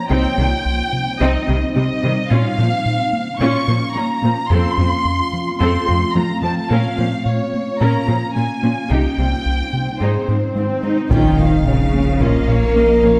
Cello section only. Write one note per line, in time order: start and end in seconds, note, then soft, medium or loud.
0.10 0.18 C3 medium
0.38 0.46 C3 soft
1.20 1.28 C3 medium
1.48 1.56 C3 soft
1.75 1.83 C3 soft
2.03 2.11 C3 soft
2.31 2.39 A#2 medium
2.58 2.66 A#2 soft
3.41 3.49 A#2 medium
3.68 3.76 A#2 soft
3.95 4.03 A#2 soft
4.23 4.31 A#2 soft
4.50 4.58 F2 medium
4.78 4.86 F2 soft
5.60 5.68 F2 medium
5.88 5.96 F2 soft
6.15 6.23 F2 soft
6.42 6.50 F2 soft
6.70 6.78 A#2 medium
6.98 7.06 A#2 soft
7.81 7.89 A#2 medium
8.08 8.16 A#2 soft
8.35 8.43 A#2 soft
8.62 8.70 A#2 soft
8.90 8.98 C3 medium
9.18 9.26 C3 soft
10.01 10.09 G#2 soft
10.28 10.36 G#2 soft
10.56 10.64 G#2 soft
10.83 10.91 G#2 soft
11.10 11.62 D#3 medium
11.66 12.20 C#3 medium
12.21 13.20 A#3 medium